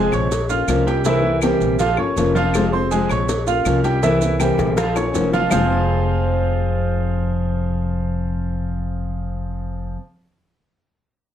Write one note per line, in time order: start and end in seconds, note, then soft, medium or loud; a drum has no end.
0.00 0.31 C3 medium
0.00 0.29 F3 medium
0.00 0.31 G#3 medium
0.00 0.31 C4 medium
0.00 0.30 F4 medium
0.11 0.64 A#1 loud
0.11 0.43 C#5 medium
0.11 0.43 C#6 medium
0.11 cowbell medium
0.11 claves medium
0.11 maracas soft
0.31 muted nylon-string guitar stroke medium
0.31 cowbell loud
0.31 maracas medium
0.49 0.67 A#3 soft
0.49 0.68 C#4 soft
0.49 0.80 F4 medium
0.49 0.68 F4 soft
0.49 0.80 F5 medium
0.49 0.81 F6 medium
0.49 maracas medium
0.67 1.55 C2 medium
0.67 0.86 F3 medium
0.67 0.86 A#3 medium
0.67 0.85 C#4 medium
0.67 0.85 F4 medium
0.67 cowbell medium
0.67 claves medium
0.67 maracas medium
0.86 1.02 G3 medium
0.86 1.05 A#3 soft
0.86 1.05 C#4 soft
0.86 1.04 F4 medium
0.86 1.02 G4 medium
0.86 1.02 G5 medium
0.86 cowbell medium
0.86 maracas soft
1.04 1.23 C3 medium
1.04 1.23 E3 medium
1.04 1.36 E3 medium
1.04 1.24 A#3 medium
1.04 1.23 C4 medium
1.04 1.36 E4 medium
1.04 1.22 E4 medium
1.04 1.36 E5 medium
1.04 cowbell loud
1.04 maracas medium
1.23 1.42 A#3 soft
1.23 1.42 C4 soft
1.23 1.41 E4 medium
1.42 1.79 C3 medium
1.42 1.79 E3 medium
1.42 1.73 G3 medium
1.42 1.78 A#3 medium
1.42 1.79 C4 medium
1.42 1.80 E4 medium
1.42 1.73 G4 medium
1.42 1.74 G5 medium
1.42 cowbell medium
1.42 claves medium
1.42 maracas medium
1.60 1.95 A#1 loud
1.60 maracas soft
1.79 1.95 F3 medium
1.79 1.95 F4 medium
1.79 1.95 F5 medium
1.79 muted nylon-string guitar stroke medium
1.79 cowbell loud
1.79 maracas medium
1.97 2.16 G1 medium
1.97 2.16 A#3 soft
1.97 2.28 C#4 medium
1.97 2.17 C#4 soft
1.97 2.16 F4 medium
1.97 2.29 C#5 medium
1.97 2.29 C#6 medium
1.97 claves medium
2.16 3.04 F1 medium
2.16 2.35 F3 medium
2.16 2.35 A#3 medium
2.16 2.36 C#4 medium
2.16 2.35 F4 medium
2.16 cowbell medium
2.16 maracas medium
2.35 2.66 F3 medium
2.35 2.55 A#3 soft
2.35 2.54 C#4 soft
2.35 2.66 F4 medium
2.35 2.54 F4 medium
2.35 2.66 F5 medium
2.35 cowbell medium
2.35 maracas soft
2.54 2.73 C3 medium
2.54 2.73 F3 medium
2.54 2.73 G#3 medium
2.54 2.73 C4 medium
2.54 2.72 F4 medium
2.54 cowbell loud
2.54 claves medium
2.54 maracas medium
2.72 2.92 G#3 soft
2.72 2.88 C4 medium
2.72 2.92 C4 soft
2.72 2.91 F4 medium
2.72 2.88 C5 medium
2.72 2.88 C6 medium
2.91 3.28 C3 medium
2.91 3.27 F3 medium
2.91 3.06 G#3 medium
2.91 3.28 G#3 medium
2.91 3.29 C4 medium
2.91 3.28 F4 medium
2.91 3.06 G#4 medium
2.91 3.07 G#5 medium
2.91 cowbell medium
2.91 maracas medium
3.09 3.61 A#1 loud
3.09 3.40 C#5 medium
3.09 3.41 C#6 medium
3.09 cowbell medium
3.09 claves medium
3.09 maracas soft
3.28 muted nylon-string guitar stroke medium
3.28 cowbell loud
3.28 maracas medium
3.46 3.64 A#3 soft
3.46 3.65 C#4 soft
3.46 3.65 F4 soft
3.46 3.78 F4 medium
3.46 3.78 F5 medium
3.46 3.78 F6 medium
3.46 maracas medium
3.65 4.52 C2 medium
3.65 3.83 F3 medium
3.65 3.83 A#3 medium
3.65 3.83 C#4 medium
3.65 3.82 F4 medium
3.65 cowbell medium
3.65 claves medium
3.65 maracas medium
3.83 3.99 G3 medium
3.83 4.02 A#3 soft
3.83 4.02 C#4 soft
3.83 4.02 F4 medium
3.83 3.99 G4 medium
3.83 4.00 G5 medium
3.83 cowbell medium
3.83 maracas soft
4.02 4.20 C3 medium
4.02 4.33 E3 medium
4.02 4.21 E3 medium
4.02 4.21 A#3 medium
4.02 4.21 C4 medium
4.02 4.33 E4 medium
4.02 4.20 E4 medium
4.02 4.33 E5 medium
4.02 cowbell loud
4.02 maracas medium
4.21 4.39 A#3 soft
4.21 4.39 C4 soft
4.21 4.39 E4 soft
4.21 maracas medium
4.39 4.76 C3 medium
4.39 4.76 E3 medium
4.39 4.70 G3 medium
4.39 4.76 A#3 medium
4.39 4.76 C4 medium
4.39 4.77 E4 medium
4.39 4.70 G4 medium
4.39 4.70 G5 medium
4.39 cowbell medium
4.39 claves medium
4.39 maracas medium
4.58 5.10 A#1 loud
4.58 high bongo medium
4.58 maracas soft
4.77 4.92 F3 medium
4.77 4.92 F4 medium
4.77 4.93 F5 medium
4.77 muted nylon-string guitar stroke medium
4.77 cowbell loud
4.77 high bongo medium
4.77 maracas medium
4.95 5.13 A#3 soft
4.95 5.26 C#4 medium
4.95 5.13 C#4 soft
4.95 5.13 F4 medium
4.95 5.26 C#5 medium
4.95 5.26 C#6 medium
4.95 low bongo medium
4.95 claves medium
4.95 maracas medium
5.13 5.47 F1 medium
5.13 5.31 F3 medium
5.13 5.32 A#3 medium
5.13 5.32 C#4 medium
5.13 5.30 F4 medium
5.13 cowbell medium
5.13 low bongo medium
5.13 maracas medium
5.32 5.48 F3 medium
5.32 5.51 A#3 soft
5.32 5.50 F4 soft
5.32 5.48 F4 medium
5.32 5.48 F5 medium
5.32 cowbell medium
5.32 low bongo medium
5.32 maracas soft
5.50 9.93 F1 loud
5.50 9.97 F2 medium
5.50 9.97 C3 medium
5.50 9.93 F3 medium
5.50 9.98 F3 medium
5.50 9.98 G#3 medium
5.50 9.93 C4 medium
5.50 9.98 C4 medium
5.50 9.93 F4 medium
5.50 9.98 F4 medium
5.50 9.93 G#4 medium
5.50 9.93 C5 medium
5.50 9.93 F5 loud
5.50 low bongo loud
5.50 claves loud
5.50 maracas loud